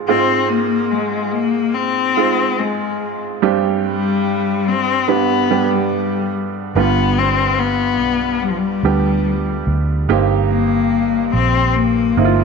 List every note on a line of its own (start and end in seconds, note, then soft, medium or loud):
0.00 0.08 C4 medium
0.00 0.09 D#4 soft
0.00 0.09 F4 medium
0.08 1.29 G#2 soft
0.08 1.66 G#3 medium
0.08 1.67 C4 medium
0.08 0.51 C4 medium
0.08 1.67 D#4 medium
0.08 1.67 F4 medium
0.49 0.93 A#3 medium
0.91 1.33 G#3 medium
1.32 1.76 A#3 medium
1.74 2.60 C4 medium
2.17 3.36 G#3 medium
2.17 3.35 C4 soft
2.17 3.36 D#4 soft
2.17 3.36 F4 medium
2.59 3.21 G#3 medium
3.42 4.63 G2 medium
3.42 5.00 G3 medium
3.42 5.00 C4 medium
3.42 5.00 D4 medium
3.42 5.01 G4 medium
3.86 4.70 G3 medium
4.69 5.11 C4 medium
5.08 6.29 G2 soft
5.08 5.48 G3 soft
5.08 5.48 B3 soft
5.08 5.73 B3 medium
5.08 5.48 D4 soft
5.08 5.48 G4 medium
5.50 6.69 G3 medium
5.50 6.69 B3 medium
5.50 6.69 D4 soft
5.50 6.69 G4 medium
5.71 6.34 G3 medium
6.75 8.00 G1 medium
6.75 7.97 G2 medium
6.75 8.34 G3 medium
6.75 7.19 B3 medium
6.75 8.34 D4 soft
6.75 8.34 F4 medium
6.75 8.34 B4 medium
7.18 7.60 C4 medium
7.59 8.43 B3 medium
8.00 8.79 B1 medium
8.42 8.49 G3 medium
8.48 8.58 F3 medium
8.57 9.67 G3 medium
8.83 9.63 D2 medium
8.83 10.03 G3 medium
8.83 10.03 B3 soft
8.83 10.03 D4 soft
8.83 10.03 G4 medium
9.67 10.05 D2 medium
10.09 11.29 G1 medium
10.09 11.30 G2 medium
10.09 11.67 A#3 medium
10.09 11.67 C4 medium
10.09 11.67 D#4 medium
10.09 11.67 G4 medium
10.50 11.29 A#3 medium
11.33 12.13 A#1 medium
11.33 11.76 C4 medium
11.75 12.40 A#3 medium
12.17 12.44 G1 medium
12.17 12.44 A#3 medium
12.17 12.44 C4 medium
12.17 12.44 D#4 soft
12.17 12.24 E4 soft
12.25 12.44 F4 medium
12.38 12.44 G3 medium